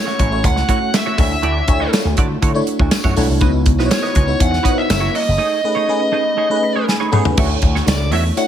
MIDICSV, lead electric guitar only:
0, 0, Header, 1, 2, 480
1, 0, Start_track
1, 0, Tempo, 495458
1, 1389, Time_signature, 4, 2, 24, 8
1, 8210, End_track
2, 0, Start_track
2, 0, Title_t, "Lead electric guitar"
2, 0, Program_c, 0, 29
2, 0, Note_on_c, 0, 73, 79
2, 436, Note_on_c, 0, 78, 98
2, 447, Note_off_c, 0, 73, 0
2, 924, Note_on_c, 0, 76, 82
2, 927, Note_off_c, 0, 78, 0
2, 1154, Note_off_c, 0, 76, 0
2, 1166, Note_on_c, 0, 76, 74
2, 1839, Note_off_c, 0, 76, 0
2, 3788, Note_on_c, 0, 73, 89
2, 4282, Note_on_c, 0, 78, 100
2, 4283, Note_off_c, 0, 73, 0
2, 4631, Note_on_c, 0, 76, 87
2, 4646, Note_off_c, 0, 78, 0
2, 4996, Note_off_c, 0, 76, 0
2, 5000, Note_on_c, 0, 75, 82
2, 6635, Note_off_c, 0, 75, 0
2, 7641, Note_on_c, 0, 74, 91
2, 7868, Note_off_c, 0, 74, 0
2, 7871, Note_on_c, 0, 76, 92
2, 7936, Note_off_c, 0, 76, 0
2, 8118, Note_on_c, 0, 78, 95
2, 8210, Note_off_c, 0, 78, 0
2, 8210, End_track
0, 0, End_of_file